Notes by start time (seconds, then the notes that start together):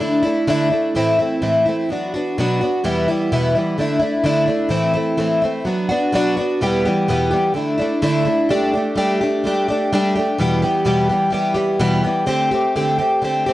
Already playing: D3
0.00 A3 D4 E4
0.23 D4 E4
0.27 A3
0.47 D3 A3 D4 E4
0.70 A3 D4 E4
0.95 A2 E3 A3 C4 E4
1.19 A3 C4 E4
1.42 A2 E3 A3 C4 E4
1.66 A3 C4 E4
1.89 F#3 B3 D4 F#4
2.14 B3 D4 F#4
2.38 B2 F#3 B3 D4 F#4
2.61 B3 D4 F#4
2.84 E2 B2 E3 G3 B3 E4
3.08 E3 G3 B3 E4
3.32 E2 B2 E3 G3 B3 E4
3.55 E3 G3 B3 E4
3.78 D3 A3 D4 E4
4.00 A3 D4 E4
4.24 D3 A3 D4 E4
4.46 A3 D4 E4
4.69 A2 E3 A3 C4 E4
4.94 A3 C4 E4
5.17 A2 E3 A3 C4 E4
5.42 A3 C4 E4
5.65 F#3 B3 D4 F#4
5.89 B3 D4 F#4
6.12 B2 F#3 B3 D4 F#4
6.37 B3 D4 F#4
6.61 E2 B2 E3 G3 B3 G4
6.85 E3 G3 B3 G4
7.08 E2 B2 E3 G3 B3 G4
7.31 E3 G3 B3 G4
7.54 D3 A3 D4 E4
7.78 A3 D4 E4
8.02 D3 A3 D4 E4
8.25 A3 D4 E4
8.49 G3 A3 D4 G4
8.74 A3 D4 G4
8.96 G3 A3 D4 G4
9.21 A3 D4 G4
9.44 G3 A3 D4 G4
9.68 A3 D4 G4
9.93 G3 A3 D4 G4
10.15 A3 D4 G4
10.38 E2 B2 E3 G3 B3 G4
10.62 E3 G3 B3 G4
10.85 E2 B2 E3 G3 B3 G4
11.09 E3 G3 B3 G4
11.30 E3 G3 B3 G4
11.54 E3 G3 B3 G4
11.79 E2 B2 E3 G3 B3 G4
12.04 E3 G3 B3 G4
12.26 D3 A3 C4 G4
12.51 A3 C4 G4
12.76 D3 A3 C4 G4
12.98 A3 C4 G4
13.22 D3 A3 C4 G4
13.46 A3 C4 G4